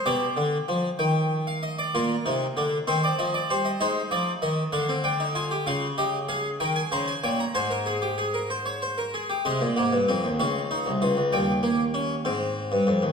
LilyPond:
<<
  \new Staff \with { instrumentName = "Harpsichord" } { \time 6/8 \key ees \major \tempo 4. = 64 << { d''4. g''8. f''16 ees''16 d''16 | bes'4. c''16 d''16 ees''16 d''16 c''16 ees''16 | c''8 d''8 ees''8 f''8 g''8 aes''8 | \key aes \major f''8 ees''8 f''8 g''16 aes''16 bes''16 aes''16 g''16 bes''16 |
aes''2~ aes''8 r8 | ees''4. f''4. | g''2. | } \\ { g'2. | f'8 ees'8 d'8 c'4. | ees'4. d'16 c'16 d'16 ees'16 f'16 g'16 | f'8 g'8 aes'8 bes'8 c''8 des''8 |
c''16 bes'16 aes'16 g'16 aes'16 bes'16 c''16 des''16 c''16 bes'16 aes'16 g'16 | aes8 bes8 c'8 des'8 ees'8 f'8 | g8 bes8 des'8 c'4. | } >> }
  \new Staff \with { instrumentName = "Harpsichord" } { \clef bass \time 6/8 \key ees \major b,8 d8 f8 ees4. | bes,8 c8 d8 ees8 f8 g8 | aes8 f8 ees8 d4. | \key aes \major des4. ees8 des8 bes,8 |
aes,2~ aes,8 r8 | c16 bes,16 aes,16 g,16 f,16 ees,16 des,8. c,16 des,16 des,16 | ees,4. aes,8. g,16 f,16 ees,16 | }
>>